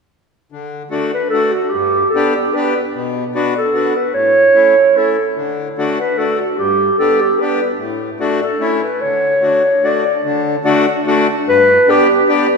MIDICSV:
0, 0, Header, 1, 3, 480
1, 0, Start_track
1, 0, Key_signature, 2, "major"
1, 0, Tempo, 406780
1, 601, Time_signature, 3, 2, 24, 8
1, 13069, Tempo, 397878
1, 14876, End_track
2, 0, Start_track
2, 0, Title_t, "Clarinet"
2, 0, Program_c, 0, 71
2, 1343, Note_on_c, 0, 71, 74
2, 1523, Note_off_c, 0, 71, 0
2, 1530, Note_on_c, 0, 69, 89
2, 1791, Note_on_c, 0, 66, 75
2, 1809, Note_off_c, 0, 69, 0
2, 2007, Note_on_c, 0, 67, 91
2, 2025, Note_off_c, 0, 66, 0
2, 2470, Note_off_c, 0, 67, 0
2, 2477, Note_on_c, 0, 69, 74
2, 2735, Note_off_c, 0, 69, 0
2, 2774, Note_on_c, 0, 67, 67
2, 2989, Note_on_c, 0, 71, 82
2, 3007, Note_off_c, 0, 67, 0
2, 3353, Note_off_c, 0, 71, 0
2, 4220, Note_on_c, 0, 69, 70
2, 4674, Note_on_c, 0, 71, 69
2, 4692, Note_off_c, 0, 69, 0
2, 4876, Note_off_c, 0, 71, 0
2, 4883, Note_on_c, 0, 73, 105
2, 5863, Note_on_c, 0, 69, 75
2, 5881, Note_off_c, 0, 73, 0
2, 6239, Note_off_c, 0, 69, 0
2, 7068, Note_on_c, 0, 71, 83
2, 7287, Note_on_c, 0, 69, 85
2, 7305, Note_off_c, 0, 71, 0
2, 7540, Note_off_c, 0, 69, 0
2, 7547, Note_on_c, 0, 66, 59
2, 7760, Note_off_c, 0, 66, 0
2, 7767, Note_on_c, 0, 67, 83
2, 8226, Note_off_c, 0, 67, 0
2, 8238, Note_on_c, 0, 69, 85
2, 8500, Note_on_c, 0, 67, 72
2, 8518, Note_off_c, 0, 69, 0
2, 8716, Note_on_c, 0, 71, 70
2, 8734, Note_off_c, 0, 67, 0
2, 9095, Note_off_c, 0, 71, 0
2, 9947, Note_on_c, 0, 69, 64
2, 10393, Note_off_c, 0, 69, 0
2, 10416, Note_on_c, 0, 71, 68
2, 10631, Note_on_c, 0, 73, 93
2, 10649, Note_off_c, 0, 71, 0
2, 11629, Note_on_c, 0, 74, 83
2, 11646, Note_off_c, 0, 73, 0
2, 12001, Note_off_c, 0, 74, 0
2, 13564, Note_on_c, 0, 71, 116
2, 14064, Note_on_c, 0, 67, 98
2, 14082, Note_off_c, 0, 71, 0
2, 14786, Note_off_c, 0, 67, 0
2, 14876, End_track
3, 0, Start_track
3, 0, Title_t, "Accordion"
3, 0, Program_c, 1, 21
3, 614, Note_on_c, 1, 50, 59
3, 977, Note_off_c, 1, 50, 0
3, 1064, Note_on_c, 1, 57, 64
3, 1069, Note_on_c, 1, 66, 65
3, 1076, Note_on_c, 1, 62, 60
3, 1310, Note_off_c, 1, 57, 0
3, 1313, Note_off_c, 1, 66, 0
3, 1316, Note_off_c, 1, 62, 0
3, 1559, Note_on_c, 1, 62, 52
3, 1578, Note_on_c, 1, 57, 51
3, 1578, Note_on_c, 1, 66, 58
3, 1796, Note_off_c, 1, 62, 0
3, 1806, Note_off_c, 1, 57, 0
3, 1806, Note_off_c, 1, 66, 0
3, 2045, Note_on_c, 1, 43, 59
3, 2406, Note_off_c, 1, 43, 0
3, 2532, Note_on_c, 1, 59, 53
3, 2546, Note_on_c, 1, 62, 53
3, 2546, Note_on_c, 1, 67, 70
3, 2757, Note_off_c, 1, 59, 0
3, 2764, Note_off_c, 1, 62, 0
3, 2764, Note_off_c, 1, 67, 0
3, 3011, Note_on_c, 1, 62, 55
3, 3015, Note_on_c, 1, 67, 61
3, 3019, Note_on_c, 1, 59, 56
3, 3231, Note_off_c, 1, 62, 0
3, 3233, Note_off_c, 1, 67, 0
3, 3235, Note_off_c, 1, 59, 0
3, 3477, Note_on_c, 1, 47, 71
3, 3828, Note_off_c, 1, 47, 0
3, 3943, Note_on_c, 1, 59, 70
3, 3954, Note_on_c, 1, 62, 61
3, 3955, Note_on_c, 1, 66, 79
3, 4171, Note_off_c, 1, 59, 0
3, 4177, Note_off_c, 1, 62, 0
3, 4177, Note_off_c, 1, 66, 0
3, 4412, Note_on_c, 1, 66, 59
3, 4413, Note_on_c, 1, 62, 50
3, 4426, Note_on_c, 1, 59, 52
3, 4642, Note_off_c, 1, 66, 0
3, 4643, Note_off_c, 1, 62, 0
3, 4649, Note_off_c, 1, 59, 0
3, 4878, Note_on_c, 1, 45, 56
3, 5246, Note_off_c, 1, 45, 0
3, 5362, Note_on_c, 1, 57, 51
3, 5367, Note_on_c, 1, 61, 49
3, 5368, Note_on_c, 1, 64, 58
3, 5602, Note_off_c, 1, 57, 0
3, 5605, Note_off_c, 1, 61, 0
3, 5605, Note_off_c, 1, 64, 0
3, 5852, Note_on_c, 1, 57, 47
3, 5855, Note_on_c, 1, 61, 41
3, 5861, Note_on_c, 1, 64, 48
3, 6095, Note_off_c, 1, 57, 0
3, 6096, Note_off_c, 1, 61, 0
3, 6099, Note_off_c, 1, 64, 0
3, 6332, Note_on_c, 1, 50, 67
3, 6707, Note_off_c, 1, 50, 0
3, 6821, Note_on_c, 1, 57, 72
3, 6821, Note_on_c, 1, 62, 66
3, 6827, Note_on_c, 1, 66, 71
3, 7061, Note_off_c, 1, 57, 0
3, 7062, Note_off_c, 1, 62, 0
3, 7065, Note_off_c, 1, 66, 0
3, 7296, Note_on_c, 1, 57, 53
3, 7299, Note_on_c, 1, 66, 52
3, 7301, Note_on_c, 1, 62, 45
3, 7542, Note_off_c, 1, 57, 0
3, 7543, Note_off_c, 1, 66, 0
3, 7544, Note_off_c, 1, 62, 0
3, 7767, Note_on_c, 1, 43, 58
3, 8145, Note_off_c, 1, 43, 0
3, 8252, Note_on_c, 1, 67, 61
3, 8257, Note_on_c, 1, 62, 53
3, 8262, Note_on_c, 1, 59, 57
3, 8496, Note_off_c, 1, 67, 0
3, 8498, Note_off_c, 1, 62, 0
3, 8500, Note_off_c, 1, 59, 0
3, 8741, Note_on_c, 1, 59, 53
3, 8746, Note_on_c, 1, 62, 52
3, 8750, Note_on_c, 1, 67, 59
3, 8974, Note_off_c, 1, 59, 0
3, 8976, Note_off_c, 1, 62, 0
3, 8979, Note_off_c, 1, 67, 0
3, 9193, Note_on_c, 1, 45, 59
3, 9563, Note_off_c, 1, 45, 0
3, 9676, Note_on_c, 1, 57, 70
3, 9677, Note_on_c, 1, 62, 71
3, 9678, Note_on_c, 1, 66, 78
3, 9915, Note_off_c, 1, 57, 0
3, 9915, Note_off_c, 1, 62, 0
3, 9916, Note_off_c, 1, 66, 0
3, 10145, Note_on_c, 1, 57, 58
3, 10152, Note_on_c, 1, 61, 49
3, 10165, Note_on_c, 1, 64, 62
3, 10390, Note_off_c, 1, 57, 0
3, 10393, Note_off_c, 1, 61, 0
3, 10400, Note_off_c, 1, 64, 0
3, 10650, Note_on_c, 1, 50, 55
3, 11012, Note_off_c, 1, 50, 0
3, 11110, Note_on_c, 1, 57, 58
3, 11111, Note_on_c, 1, 66, 56
3, 11122, Note_on_c, 1, 62, 48
3, 11356, Note_off_c, 1, 57, 0
3, 11356, Note_off_c, 1, 66, 0
3, 11362, Note_off_c, 1, 62, 0
3, 11601, Note_on_c, 1, 62, 45
3, 11603, Note_on_c, 1, 57, 58
3, 11606, Note_on_c, 1, 66, 54
3, 11849, Note_off_c, 1, 62, 0
3, 11850, Note_off_c, 1, 57, 0
3, 11851, Note_off_c, 1, 66, 0
3, 12086, Note_on_c, 1, 50, 82
3, 12463, Note_off_c, 1, 50, 0
3, 12561, Note_on_c, 1, 62, 66
3, 12569, Note_on_c, 1, 57, 82
3, 12570, Note_on_c, 1, 66, 91
3, 12811, Note_off_c, 1, 62, 0
3, 12815, Note_off_c, 1, 57, 0
3, 12815, Note_off_c, 1, 66, 0
3, 13063, Note_on_c, 1, 62, 65
3, 13064, Note_on_c, 1, 57, 73
3, 13066, Note_on_c, 1, 66, 84
3, 13305, Note_off_c, 1, 62, 0
3, 13306, Note_off_c, 1, 57, 0
3, 13307, Note_off_c, 1, 66, 0
3, 13548, Note_on_c, 1, 43, 68
3, 13916, Note_off_c, 1, 43, 0
3, 14041, Note_on_c, 1, 62, 69
3, 14044, Note_on_c, 1, 67, 74
3, 14045, Note_on_c, 1, 59, 67
3, 14271, Note_off_c, 1, 62, 0
3, 14273, Note_off_c, 1, 59, 0
3, 14273, Note_off_c, 1, 67, 0
3, 14527, Note_on_c, 1, 59, 61
3, 14528, Note_on_c, 1, 67, 70
3, 14535, Note_on_c, 1, 62, 57
3, 14754, Note_off_c, 1, 59, 0
3, 14754, Note_off_c, 1, 67, 0
3, 14757, Note_off_c, 1, 62, 0
3, 14876, End_track
0, 0, End_of_file